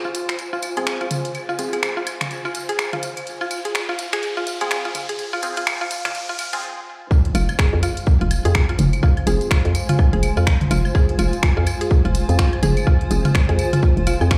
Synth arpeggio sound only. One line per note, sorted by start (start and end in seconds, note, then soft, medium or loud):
0.05 0.07 F4 medium
0.53 0.56 F4 loud
0.77 0.79 G#4 loud
1.01 1.03 F4 loud
1.49 1.52 F4 loud
1.73 1.75 G#4 medium
1.97 1.99 F4 loud
2.45 2.48 F4 medium
2.69 2.71 G#4 loud
2.93 2.95 F4 medium
3.41 3.44 F4 loud
3.65 3.67 G#4 medium
3.89 3.92 F4 loud
4.13 4.15 G#4 loud
4.37 4.40 F4 loud
4.61 4.63 G#4 loud
4.85 4.88 F4 loud
5.09 5.11 G#4 loud
5.33 5.36 F4 loud
5.57 5.60 F4 loud
5.81 5.84 F4 loud
6.05 6.08 F4 loud
6.29 6.32 F4 loud
6.53 6.56 F4 loud
7.35 7.39 F4 loud
7.59 7.62 G#4 medium
7.83 7.86 F4 loud
8.21 8.24 F4 loud
8.45 8.47 G#4 loud
8.69 8.71 F4 loud
9.03 9.07 F4 loud
9.27 9.30 G#4 loud
9.51 9.54 F4 loud
9.89 9.92 F4 loud
10.13 10.15 G#4 loud
10.37 10.39 F4 loud
10.71 10.76 F4 loud
10.95 10.98 G#4 loud
11.19 11.22 F4 loud
11.57 11.60 F4 loud
11.81 11.83 G#4 loud
12.05 12.07 F4 loud
12.39 12.43 F4 loud
12.63 12.66 G#4 loud
12.87 12.90 F4 loud
13.25 13.28 F4 loud
13.49 13.51 G#4 loud
13.73 13.75 F4 loud
14.07 14.11 F4 loud
14.31 14.35 F4 loud